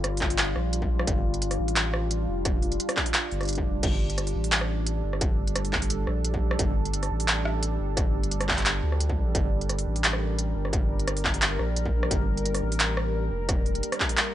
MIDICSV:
0, 0, Header, 1, 4, 480
1, 0, Start_track
1, 0, Key_signature, -2, "minor"
1, 0, Tempo, 344828
1, 1495, Time_signature, 4, 2, 24, 8
1, 19965, End_track
2, 0, Start_track
2, 0, Title_t, "Ambient pad"
2, 0, Program_c, 0, 92
2, 0, Note_on_c, 0, 55, 81
2, 0, Note_on_c, 0, 62, 74
2, 0, Note_on_c, 0, 65, 89
2, 5304, Note_off_c, 0, 65, 0
2, 5332, Note_on_c, 0, 69, 91
2, 12983, Note_off_c, 0, 69, 0
2, 13014, Note_on_c, 0, 70, 87
2, 19965, Note_off_c, 0, 55, 0
2, 19965, Note_off_c, 0, 62, 0
2, 19965, Note_off_c, 0, 70, 0
2, 19965, End_track
3, 0, Start_track
3, 0, Title_t, "Sub bass"
3, 0, Program_c, 1, 38
3, 0, Note_on_c, 1, 31, 100
3, 757, Note_off_c, 1, 31, 0
3, 778, Note_on_c, 1, 34, 98
3, 1479, Note_off_c, 1, 34, 0
3, 1495, Note_on_c, 1, 31, 98
3, 2197, Note_off_c, 1, 31, 0
3, 2219, Note_on_c, 1, 33, 97
3, 3159, Note_off_c, 1, 33, 0
3, 3179, Note_on_c, 1, 29, 102
3, 3879, Note_off_c, 1, 29, 0
3, 4616, Note_on_c, 1, 31, 98
3, 5077, Note_off_c, 1, 31, 0
3, 5096, Note_on_c, 1, 29, 100
3, 5318, Note_off_c, 1, 29, 0
3, 5335, Note_on_c, 1, 31, 99
3, 6037, Note_off_c, 1, 31, 0
3, 6056, Note_on_c, 1, 33, 96
3, 6997, Note_off_c, 1, 33, 0
3, 7018, Note_on_c, 1, 31, 99
3, 8438, Note_off_c, 1, 31, 0
3, 8458, Note_on_c, 1, 34, 101
3, 9159, Note_off_c, 1, 34, 0
3, 9177, Note_on_c, 1, 31, 102
3, 9878, Note_off_c, 1, 31, 0
3, 9896, Note_on_c, 1, 33, 96
3, 10838, Note_off_c, 1, 33, 0
3, 10857, Note_on_c, 1, 31, 100
3, 12278, Note_off_c, 1, 31, 0
3, 12294, Note_on_c, 1, 38, 100
3, 12997, Note_off_c, 1, 38, 0
3, 13015, Note_on_c, 1, 31, 98
3, 13717, Note_off_c, 1, 31, 0
3, 13736, Note_on_c, 1, 33, 96
3, 14678, Note_off_c, 1, 33, 0
3, 14698, Note_on_c, 1, 31, 100
3, 16119, Note_off_c, 1, 31, 0
3, 16140, Note_on_c, 1, 34, 99
3, 16840, Note_off_c, 1, 34, 0
3, 16857, Note_on_c, 1, 31, 98
3, 17558, Note_off_c, 1, 31, 0
3, 17576, Note_on_c, 1, 33, 99
3, 18517, Note_off_c, 1, 33, 0
3, 18537, Note_on_c, 1, 29, 101
3, 19238, Note_off_c, 1, 29, 0
3, 19965, End_track
4, 0, Start_track
4, 0, Title_t, "Drums"
4, 56, Note_on_c, 9, 37, 79
4, 56, Note_on_c, 9, 42, 65
4, 195, Note_off_c, 9, 37, 0
4, 195, Note_off_c, 9, 42, 0
4, 240, Note_on_c, 9, 46, 70
4, 294, Note_on_c, 9, 39, 60
4, 295, Note_on_c, 9, 36, 60
4, 379, Note_off_c, 9, 46, 0
4, 422, Note_on_c, 9, 46, 72
4, 433, Note_off_c, 9, 39, 0
4, 434, Note_off_c, 9, 36, 0
4, 533, Note_on_c, 9, 39, 114
4, 533, Note_on_c, 9, 42, 75
4, 561, Note_off_c, 9, 46, 0
4, 672, Note_off_c, 9, 39, 0
4, 672, Note_off_c, 9, 42, 0
4, 775, Note_on_c, 9, 37, 54
4, 915, Note_off_c, 9, 37, 0
4, 1015, Note_on_c, 9, 42, 64
4, 1142, Note_on_c, 9, 36, 61
4, 1155, Note_off_c, 9, 42, 0
4, 1281, Note_off_c, 9, 36, 0
4, 1384, Note_on_c, 9, 37, 82
4, 1495, Note_on_c, 9, 36, 112
4, 1496, Note_on_c, 9, 42, 81
4, 1523, Note_off_c, 9, 37, 0
4, 1634, Note_off_c, 9, 36, 0
4, 1635, Note_off_c, 9, 42, 0
4, 1863, Note_on_c, 9, 42, 37
4, 1974, Note_off_c, 9, 42, 0
4, 1974, Note_on_c, 9, 42, 66
4, 2100, Note_on_c, 9, 37, 54
4, 2100, Note_on_c, 9, 46, 67
4, 2113, Note_off_c, 9, 42, 0
4, 2240, Note_off_c, 9, 37, 0
4, 2240, Note_off_c, 9, 46, 0
4, 2340, Note_on_c, 9, 46, 72
4, 2454, Note_on_c, 9, 39, 113
4, 2454, Note_on_c, 9, 42, 78
4, 2479, Note_off_c, 9, 46, 0
4, 2593, Note_off_c, 9, 39, 0
4, 2593, Note_off_c, 9, 42, 0
4, 2694, Note_on_c, 9, 37, 83
4, 2833, Note_off_c, 9, 37, 0
4, 2934, Note_on_c, 9, 42, 65
4, 3073, Note_off_c, 9, 42, 0
4, 3414, Note_on_c, 9, 36, 111
4, 3414, Note_on_c, 9, 37, 56
4, 3414, Note_on_c, 9, 42, 81
4, 3553, Note_off_c, 9, 37, 0
4, 3553, Note_off_c, 9, 42, 0
4, 3554, Note_off_c, 9, 36, 0
4, 3653, Note_on_c, 9, 46, 39
4, 3782, Note_on_c, 9, 42, 38
4, 3792, Note_off_c, 9, 46, 0
4, 3896, Note_off_c, 9, 42, 0
4, 3896, Note_on_c, 9, 42, 70
4, 4020, Note_on_c, 9, 37, 85
4, 4020, Note_on_c, 9, 46, 68
4, 4035, Note_off_c, 9, 42, 0
4, 4130, Note_on_c, 9, 39, 60
4, 4134, Note_on_c, 9, 36, 59
4, 4160, Note_off_c, 9, 37, 0
4, 4160, Note_off_c, 9, 46, 0
4, 4259, Note_on_c, 9, 46, 69
4, 4269, Note_off_c, 9, 39, 0
4, 4273, Note_off_c, 9, 36, 0
4, 4370, Note_on_c, 9, 39, 115
4, 4370, Note_on_c, 9, 42, 80
4, 4398, Note_off_c, 9, 46, 0
4, 4509, Note_off_c, 9, 39, 0
4, 4509, Note_off_c, 9, 42, 0
4, 4613, Note_on_c, 9, 46, 40
4, 4742, Note_on_c, 9, 37, 57
4, 4742, Note_on_c, 9, 42, 17
4, 4753, Note_off_c, 9, 46, 0
4, 4774, Note_off_c, 9, 42, 0
4, 4774, Note_on_c, 9, 42, 20
4, 4807, Note_off_c, 9, 42, 0
4, 4807, Note_on_c, 9, 42, 23
4, 4839, Note_off_c, 9, 42, 0
4, 4839, Note_on_c, 9, 42, 26
4, 4854, Note_off_c, 9, 42, 0
4, 4854, Note_on_c, 9, 42, 69
4, 4874, Note_off_c, 9, 42, 0
4, 4874, Note_on_c, 9, 42, 28
4, 4881, Note_off_c, 9, 37, 0
4, 4910, Note_off_c, 9, 42, 0
4, 4910, Note_on_c, 9, 42, 31
4, 4946, Note_off_c, 9, 42, 0
4, 4946, Note_on_c, 9, 42, 34
4, 4980, Note_on_c, 9, 36, 61
4, 5085, Note_off_c, 9, 42, 0
4, 5119, Note_off_c, 9, 36, 0
4, 5333, Note_on_c, 9, 36, 116
4, 5333, Note_on_c, 9, 42, 84
4, 5333, Note_on_c, 9, 49, 77
4, 5472, Note_off_c, 9, 36, 0
4, 5472, Note_off_c, 9, 42, 0
4, 5472, Note_off_c, 9, 49, 0
4, 5703, Note_on_c, 9, 42, 39
4, 5816, Note_off_c, 9, 42, 0
4, 5816, Note_on_c, 9, 37, 57
4, 5816, Note_on_c, 9, 42, 69
4, 5943, Note_on_c, 9, 46, 65
4, 5955, Note_off_c, 9, 37, 0
4, 5955, Note_off_c, 9, 42, 0
4, 6083, Note_off_c, 9, 46, 0
4, 6181, Note_on_c, 9, 46, 66
4, 6293, Note_on_c, 9, 39, 121
4, 6293, Note_on_c, 9, 42, 85
4, 6321, Note_off_c, 9, 46, 0
4, 6420, Note_on_c, 9, 37, 81
4, 6432, Note_off_c, 9, 39, 0
4, 6432, Note_off_c, 9, 42, 0
4, 6559, Note_off_c, 9, 37, 0
4, 6773, Note_on_c, 9, 42, 70
4, 6912, Note_off_c, 9, 42, 0
4, 7143, Note_on_c, 9, 37, 58
4, 7255, Note_on_c, 9, 36, 126
4, 7255, Note_on_c, 9, 42, 82
4, 7282, Note_off_c, 9, 37, 0
4, 7394, Note_off_c, 9, 36, 0
4, 7394, Note_off_c, 9, 42, 0
4, 7621, Note_on_c, 9, 42, 41
4, 7734, Note_off_c, 9, 42, 0
4, 7734, Note_on_c, 9, 37, 82
4, 7734, Note_on_c, 9, 42, 73
4, 7860, Note_on_c, 9, 46, 65
4, 7873, Note_off_c, 9, 37, 0
4, 7873, Note_off_c, 9, 42, 0
4, 7975, Note_on_c, 9, 39, 65
4, 7976, Note_on_c, 9, 36, 64
4, 8000, Note_off_c, 9, 46, 0
4, 8102, Note_on_c, 9, 46, 65
4, 8114, Note_off_c, 9, 39, 0
4, 8115, Note_off_c, 9, 36, 0
4, 8214, Note_on_c, 9, 42, 86
4, 8241, Note_off_c, 9, 46, 0
4, 8354, Note_off_c, 9, 42, 0
4, 8452, Note_on_c, 9, 37, 55
4, 8591, Note_off_c, 9, 37, 0
4, 8694, Note_on_c, 9, 42, 71
4, 8823, Note_on_c, 9, 36, 65
4, 8833, Note_off_c, 9, 42, 0
4, 8962, Note_off_c, 9, 36, 0
4, 9062, Note_on_c, 9, 37, 81
4, 9175, Note_on_c, 9, 42, 81
4, 9176, Note_on_c, 9, 36, 124
4, 9202, Note_off_c, 9, 37, 0
4, 9314, Note_off_c, 9, 42, 0
4, 9315, Note_off_c, 9, 36, 0
4, 9541, Note_on_c, 9, 42, 38
4, 9654, Note_off_c, 9, 42, 0
4, 9654, Note_on_c, 9, 42, 72
4, 9782, Note_on_c, 9, 37, 51
4, 9782, Note_on_c, 9, 46, 62
4, 9793, Note_off_c, 9, 42, 0
4, 9921, Note_off_c, 9, 37, 0
4, 9921, Note_off_c, 9, 46, 0
4, 10021, Note_on_c, 9, 46, 67
4, 10136, Note_on_c, 9, 39, 127
4, 10136, Note_on_c, 9, 42, 83
4, 10160, Note_off_c, 9, 46, 0
4, 10275, Note_off_c, 9, 39, 0
4, 10275, Note_off_c, 9, 42, 0
4, 10376, Note_on_c, 9, 37, 81
4, 10515, Note_off_c, 9, 37, 0
4, 10616, Note_on_c, 9, 42, 71
4, 10755, Note_off_c, 9, 42, 0
4, 11094, Note_on_c, 9, 36, 125
4, 11096, Note_on_c, 9, 37, 52
4, 11096, Note_on_c, 9, 42, 79
4, 11233, Note_off_c, 9, 36, 0
4, 11235, Note_off_c, 9, 37, 0
4, 11235, Note_off_c, 9, 42, 0
4, 11463, Note_on_c, 9, 42, 38
4, 11574, Note_off_c, 9, 42, 0
4, 11574, Note_on_c, 9, 42, 68
4, 11700, Note_on_c, 9, 37, 76
4, 11700, Note_on_c, 9, 46, 63
4, 11713, Note_off_c, 9, 42, 0
4, 11813, Note_on_c, 9, 36, 65
4, 11814, Note_on_c, 9, 39, 61
4, 11840, Note_off_c, 9, 37, 0
4, 11840, Note_off_c, 9, 46, 0
4, 11852, Note_off_c, 9, 39, 0
4, 11852, Note_on_c, 9, 39, 49
4, 11887, Note_off_c, 9, 39, 0
4, 11887, Note_on_c, 9, 39, 40
4, 11921, Note_off_c, 9, 39, 0
4, 11921, Note_on_c, 9, 39, 34
4, 11941, Note_on_c, 9, 46, 67
4, 11953, Note_off_c, 9, 36, 0
4, 11958, Note_off_c, 9, 39, 0
4, 11958, Note_on_c, 9, 39, 28
4, 11990, Note_off_c, 9, 39, 0
4, 11990, Note_on_c, 9, 39, 24
4, 12021, Note_off_c, 9, 39, 0
4, 12021, Note_on_c, 9, 39, 19
4, 12051, Note_off_c, 9, 39, 0
4, 12051, Note_on_c, 9, 39, 124
4, 12051, Note_on_c, 9, 42, 80
4, 12081, Note_off_c, 9, 46, 0
4, 12191, Note_off_c, 9, 39, 0
4, 12191, Note_off_c, 9, 42, 0
4, 12421, Note_on_c, 9, 37, 51
4, 12534, Note_on_c, 9, 42, 67
4, 12560, Note_off_c, 9, 37, 0
4, 12660, Note_on_c, 9, 36, 66
4, 12674, Note_off_c, 9, 42, 0
4, 12799, Note_off_c, 9, 36, 0
4, 13013, Note_on_c, 9, 36, 119
4, 13014, Note_on_c, 9, 42, 78
4, 13152, Note_off_c, 9, 36, 0
4, 13153, Note_off_c, 9, 42, 0
4, 13382, Note_on_c, 9, 42, 36
4, 13494, Note_off_c, 9, 42, 0
4, 13494, Note_on_c, 9, 37, 52
4, 13494, Note_on_c, 9, 42, 64
4, 13622, Note_on_c, 9, 46, 67
4, 13634, Note_off_c, 9, 37, 0
4, 13634, Note_off_c, 9, 42, 0
4, 13761, Note_off_c, 9, 46, 0
4, 13862, Note_on_c, 9, 46, 68
4, 13977, Note_on_c, 9, 39, 121
4, 13977, Note_on_c, 9, 42, 77
4, 14001, Note_off_c, 9, 46, 0
4, 14104, Note_on_c, 9, 37, 75
4, 14116, Note_off_c, 9, 39, 0
4, 14116, Note_off_c, 9, 42, 0
4, 14243, Note_off_c, 9, 37, 0
4, 14456, Note_on_c, 9, 42, 65
4, 14596, Note_off_c, 9, 42, 0
4, 14825, Note_on_c, 9, 37, 53
4, 14935, Note_on_c, 9, 36, 113
4, 14939, Note_on_c, 9, 42, 76
4, 14964, Note_off_c, 9, 37, 0
4, 15074, Note_off_c, 9, 36, 0
4, 15078, Note_off_c, 9, 42, 0
4, 15305, Note_on_c, 9, 42, 36
4, 15417, Note_off_c, 9, 42, 0
4, 15417, Note_on_c, 9, 37, 84
4, 15417, Note_on_c, 9, 42, 67
4, 15544, Note_on_c, 9, 46, 69
4, 15556, Note_off_c, 9, 37, 0
4, 15556, Note_off_c, 9, 42, 0
4, 15656, Note_on_c, 9, 36, 61
4, 15657, Note_on_c, 9, 39, 60
4, 15683, Note_off_c, 9, 46, 0
4, 15785, Note_on_c, 9, 46, 70
4, 15795, Note_off_c, 9, 36, 0
4, 15796, Note_off_c, 9, 39, 0
4, 15895, Note_on_c, 9, 39, 120
4, 15895, Note_on_c, 9, 42, 77
4, 15924, Note_off_c, 9, 46, 0
4, 16034, Note_off_c, 9, 39, 0
4, 16034, Note_off_c, 9, 42, 0
4, 16137, Note_on_c, 9, 37, 55
4, 16276, Note_off_c, 9, 37, 0
4, 16376, Note_on_c, 9, 42, 64
4, 16503, Note_on_c, 9, 36, 62
4, 16515, Note_off_c, 9, 42, 0
4, 16642, Note_off_c, 9, 36, 0
4, 16745, Note_on_c, 9, 37, 81
4, 16856, Note_on_c, 9, 36, 110
4, 16858, Note_on_c, 9, 42, 78
4, 16884, Note_off_c, 9, 37, 0
4, 16995, Note_off_c, 9, 36, 0
4, 16997, Note_off_c, 9, 42, 0
4, 17225, Note_on_c, 9, 42, 37
4, 17337, Note_off_c, 9, 42, 0
4, 17337, Note_on_c, 9, 42, 67
4, 17463, Note_on_c, 9, 37, 54
4, 17463, Note_on_c, 9, 46, 70
4, 17477, Note_off_c, 9, 42, 0
4, 17602, Note_off_c, 9, 37, 0
4, 17602, Note_off_c, 9, 46, 0
4, 17704, Note_on_c, 9, 46, 72
4, 17816, Note_on_c, 9, 39, 112
4, 17816, Note_on_c, 9, 42, 77
4, 17844, Note_off_c, 9, 46, 0
4, 17955, Note_off_c, 9, 39, 0
4, 17955, Note_off_c, 9, 42, 0
4, 18056, Note_on_c, 9, 37, 85
4, 18195, Note_off_c, 9, 37, 0
4, 18774, Note_on_c, 9, 37, 57
4, 18774, Note_on_c, 9, 42, 82
4, 18775, Note_on_c, 9, 36, 116
4, 18913, Note_off_c, 9, 37, 0
4, 18913, Note_off_c, 9, 42, 0
4, 18914, Note_off_c, 9, 36, 0
4, 19013, Note_on_c, 9, 46, 38
4, 19142, Note_on_c, 9, 42, 38
4, 19153, Note_off_c, 9, 46, 0
4, 19253, Note_off_c, 9, 42, 0
4, 19253, Note_on_c, 9, 42, 70
4, 19381, Note_on_c, 9, 37, 85
4, 19381, Note_on_c, 9, 46, 67
4, 19392, Note_off_c, 9, 42, 0
4, 19491, Note_on_c, 9, 39, 62
4, 19494, Note_on_c, 9, 36, 61
4, 19520, Note_off_c, 9, 37, 0
4, 19520, Note_off_c, 9, 46, 0
4, 19617, Note_on_c, 9, 46, 70
4, 19630, Note_off_c, 9, 39, 0
4, 19633, Note_off_c, 9, 36, 0
4, 19730, Note_on_c, 9, 39, 119
4, 19730, Note_on_c, 9, 42, 82
4, 19757, Note_off_c, 9, 46, 0
4, 19869, Note_off_c, 9, 39, 0
4, 19869, Note_off_c, 9, 42, 0
4, 19965, End_track
0, 0, End_of_file